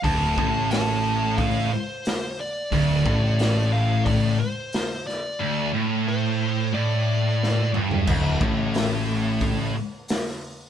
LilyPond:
<<
  \new Staff \with { instrumentName = "Lead electric guitar" } { \time 4/4 \key d \minor \tempo 4 = 90 a''4 a''4 f''8 c''4 d''8~ | d''4. f''8 d''8 c''4 d''8~ | d''8 r8 c''4 d''4. r8 | r1 | }
  \new Staff \with { instrumentName = "Distorted electric guitar" } { \clef bass \time 4/4 \key d \minor d,8 a,2 r4. | d,8 a,2 r4. | d,8 a,4. a,4. g,8 | d,8 a,2 r4. | }
  \new Staff \with { instrumentName = "Distorted electric guitar" } { \clef bass \time 4/4 \key d \minor d,8 a,2 r4. | d,8 a,2 r4. | d,8 a,4. a,4. g,8 | r1 | }
  \new Staff \with { instrumentName = "Distorted electric guitar" } { \clef bass \time 4/4 \key d \minor d,8 a,2 r4. | d,8 a,2 r4. | d,8 a,4. a,4. g,8 | d,8 a,2 r4. | }
  \new Staff \with { instrumentName = "Fingered electric bass" } { \clef bass \time 4/4 \key d \minor d,,8 a,,2 r4. | d,,8 a,,2 r4. | r1 | d,,8 a,,2 r4. | }
  \new DrumStaff \with { instrumentName = "Drums" } \drummode { \time 4/4 <hho bd>8 bd8 <hho sn>4 <hho bd>4 <hho sn>4 | <hho bd>8 bd8 <hho sn>4 <hho bd>4 <hho sn>8 sn8 | r4 r4 r4 sn8 toml16 tomfh16 | <cymc bd>8 bd8 <hho sn>4 <hho bd>4 <hho sn>16 sn8. | }
>>